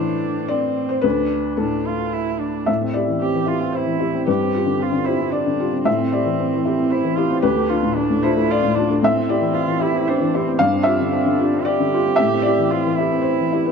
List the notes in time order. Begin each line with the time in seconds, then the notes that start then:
Already playing: A2 E3 D4 C5
0.48 C4 D5
0.89 C5
1.01 D2 D4 B4
1.57 A2 D4 A4
1.87 F4
2.13 E4
2.39 D4
2.66 A2 E5
2.81 C4
2.93 E4 G4 D5
3.08 E3
3.20 C4 G4
3.35 E3
3.46 E4 F4 G4
3.60 C4
3.72 C5
3.77 E4
3.86 E3
3.99 E4 G4
4.14 C4
4.26 G2 G4 B4
4.40 C4
4.54 F4 G4
4.66 D3
4.79 C4 F4
4.92 D3
5.04 E4 F4 G4 C5
5.20 C4
5.31 D4 D5
5.46 D3
5.60 F4 G4
5.72 C4
5.85 A2 C4 E5
5.99 C4
6.12 E4 G4 D5
6.25 E3
6.40 C4
6.54 E3
6.65 E4 G4
6.78 C4
6.90 E4 C5
7.04 E3
7.17 E4 F4 G4
7.30 C4
7.42 D2 G4 B4
7.56 A3
7.69 D4 F4
7.83 A2
7.95 A3 D4
8.10 A2
8.22 D4 E4 F4 C5
8.37 A3
8.51 F4 D5
8.63 A2
8.75 D4 F4
8.90 A3
9.02 A2 C4 E5
9.16 C4
9.29 E4 G4 D5
9.41 E3
9.54 C4 F4
9.67 E3
9.80 E4 G4
9.94 C4
10.07 D4 C5
10.20 E3
10.34 C4 E4 G4
10.48 C4
10.59 G2 D4 F5
10.72 C4
10.83 F4 G4 E5
11.00 D3
11.12 C4
11.26 D3
11.39 F4 G4
11.53 C4
11.65 G4 D5
11.80 D3
11.94 F4 G4
12.07 C4
12.16 A2 E5
12.33 C4
12.42 E4 D5
12.46 G4
12.59 E3
12.71 C4 F4
12.85 E3
12.97 E4 G4
13.12 C4
13.22 C5
13.39 E3
13.52 E4 G4
13.65 C4 B4